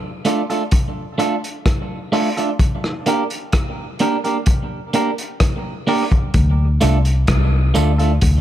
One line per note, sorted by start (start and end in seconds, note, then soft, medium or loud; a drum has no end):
0.25 0.41 A3 medium
0.25 0.41 D4 loud
0.25 0.42 F4 loud
0.25 0.42 A4 loud
0.25 closed hi-hat medium
0.50 0.62 A3 medium
0.50 0.62 D4 medium
0.50 0.62 F4 medium
0.50 0.62 A4 medium
0.50 closed hi-hat soft
0.71 kick loud
0.71 closed hi-hat loud
1.18 1.34 A3 medium
1.18 1.35 D4 medium
1.18 1.35 F4 medium
1.18 1.35 A4 loud
1.18 closed hi-hat medium
1.44 closed hi-hat medium
1.66 kick loud
1.66 cross-stick loud
1.66 closed hi-hat loud
2.12 2.28 A3 loud
2.12 2.28 D4 medium
2.12 2.29 F4 loud
2.12 2.29 A4 medium
2.12 open hi-hat medium
2.37 2.50 A3 medium
2.37 2.50 D4 medium
2.37 2.49 F4 medium
2.37 2.49 A4 medium
2.37 closed hi-hat medium
2.59 kick loud
2.59 closed hi-hat medium
2.84 cross-stick medium
3.06 3.22 A#3 medium
3.06 3.23 D4 medium
3.06 3.23 G4 loud
3.06 3.23 A#4 loud
3.06 closed hi-hat medium
3.30 closed hi-hat medium
3.52 kick loud
3.52 cross-stick loud
3.52 closed hi-hat medium
3.99 4.16 A#3 medium
3.99 4.16 D4 loud
3.99 4.16 G4 medium
3.99 4.17 A#4 loud
3.99 closed hi-hat medium
4.24 4.37 A#3 soft
4.24 4.37 D4 medium
4.24 4.37 G4 medium
4.24 4.36 A#4 medium
4.24 closed hi-hat soft
4.46 kick loud
4.46 closed hi-hat loud
4.93 5.09 A#3 loud
4.93 5.10 D4 loud
4.93 5.10 G4 medium
4.93 5.10 A#4 loud
4.93 closed hi-hat medium
5.18 closed hi-hat medium
5.40 kick loud
5.40 cross-stick loud
5.40 closed hi-hat medium
5.87 6.03 A#3 medium
5.87 6.03 D4 medium
5.87 6.04 G4 medium
5.87 6.04 A#4 medium
5.87 open hi-hat medium
6.12 kick medium
6.12 closed hi-hat medium
6.34 6.78 D2 loud
6.34 kick loud
6.34 closed hi-hat medium
6.81 7.25 C2 medium
6.81 6.97 A3 loud
6.81 6.97 D4 medium
6.81 6.97 F4 medium
6.81 6.98 A4 loud
6.81 closed hi-hat medium
6.81 tambourine medium
7.05 closed hi-hat medium
7.27 7.72 C2 loud
7.27 kick loud
7.27 cross-stick loud
7.27 closed hi-hat medium
7.74 8.19 D2 medium
7.74 7.90 A3 medium
7.74 7.91 D4 loud
7.74 7.91 F4 loud
7.74 7.91 A4 loud
7.74 closed hi-hat medium
7.74 tambourine medium
7.98 8.12 A3 medium
7.98 8.11 D4 medium
7.98 8.11 F4 medium
7.98 8.11 A4 medium
7.98 closed hi-hat soft
8.21 8.41 D2 loud
8.21 kick loud
8.21 closed hi-hat loud